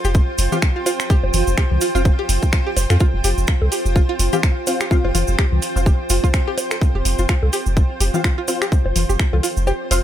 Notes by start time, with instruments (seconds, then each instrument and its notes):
Already playing: ambient pad F4 C5 G5
0.05 sub bass F1, synth pluck G4, cabasa
0.15 kick, cabasa
0.38 sub bass F1, open hi-hat, cabasa
0.52 synth stab C4 F4 F5, synth pluck G4, low conga, cabasa
0.62 finger snap, kick, cabasa
0.76 synth pluck F4
0.86 synth pluck F4, open hi-hat, high bongo, cabasa
1.00 finger snap, cabasa
1.10 synth pluck G4, kick, cabasa
1.24 sub bass F1, high bongo
1.34 sub bass F1, open hi-hat, low conga, cabasa
1.47 sub bass F1, cabasa
1.58 synth pluck G4, finger snap, kick, cabasa
1.71 sub bass C2, low conga
1.81 synth pluck F4, open hi-hat, cabasa
1.95 sub bass F1, synth stab C4 F4 F5, synth pluck F4, cabasa
2.05 kick, high bongo, cabasa
2.19 synth pluck G4
2.29 sub bass F1, open hi-hat, cabasa
2.42 kick, cabasa
2.52 finger snap, kick, cabasa
2.66 synth pluck G4
2.77 sub bass F1, open hi-hat, high bongo, cabasa
2.90 sub bass F2, synth pluck F4, finger snap, low bongo, cabasa
3.00 synth pluck F4, kick, cabasa
3.14 sub bass F1
3.24 sub bass F1, synth pluck G4, open hi-hat, cabasa
3.38 sub bass F1, cabasa
3.47 finger snap, kick, cabasa
3.62 sub bass C2, low bongo
3.72 synth pluck G4, open hi-hat, cabasa
3.85 sub bass F1, cabasa
3.96 synth pluck F4, kick, cabasa
4.09 synth pluck F4
4.19 sub bass F1, open hi-hat, cabasa
4.33 synth stab C4 F4 F5, synth pluck G4, low conga, cabasa
4.43 finger snap, kick, cabasa
4.67 synth stab C4 F4 F5, open hi-hat, high bongo, cabasa
4.80 synth pluck G4, finger snap, cabasa
4.91 synth stab C4 F4 F5, kick, cabasa
5.04 sub bass F1, synth pluck F4, high bongo
5.15 sub bass F1, synth pluck F4, open hi-hat, low conga, cabasa
5.27 sub bass F1, cabasa
5.38 synth pluck G4, finger snap, kick, cabasa
5.52 sub bass C2, low conga
5.62 open hi-hat, cabasa
5.76 sub bass F1, synth stab C4 F4 F5, cabasa
5.86 synth pluck G4, kick, cabasa
6.10 sub bass F1, synth pluck F4, open hi-hat, cabasa
6.24 synth pluck F4, kick, cabasa
6.34 finger snap, kick, cabasa
6.47 synth pluck G4
6.58 open hi-hat, high bongo, cabasa
6.71 finger snap, low bongo, cabasa
6.81 kick, cabasa
6.95 sub bass F1, synth pluck G4
7.05 sub bass F1, open hi-hat, cabasa
7.18 sub bass F1, synth pluck F4, cabasa
7.29 synth pluck F4, finger snap, kick, cabasa
7.43 sub bass C2, low bongo
7.53 synth pluck G4, open hi-hat, cabasa
7.66 sub bass F1, cabasa
7.77 kick, cabasa
8.01 sub bass F1, synth pluck G4, open hi-hat, cabasa
8.14 synth stab C4 F4 F5, low conga, cabasa
8.24 synth pluck F4, finger snap, kick, cabasa
8.38 synth pluck F4
8.48 synth stab C4 F4 F5, open hi-hat, high bongo, cabasa
8.62 synth pluck G4, finger snap, cabasa
8.72 kick, cabasa
8.86 sub bass F1, high bongo
8.96 sub bass F1, open hi-hat, low conga, cabasa
9.09 sub bass F1, synth pluck G4, cabasa
9.19 finger snap, kick, cabasa
9.33 sub bass C2, synth pluck F4, low bongo, low conga
9.43 synth pluck F4, open hi-hat, cabasa
9.57 sub bass F1, cabasa
9.67 synth pluck G4, high bongo, cabasa
9.91 sub bass F1, synth stab C4 F4 F5, synth pluck C5, open hi-hat, cabasa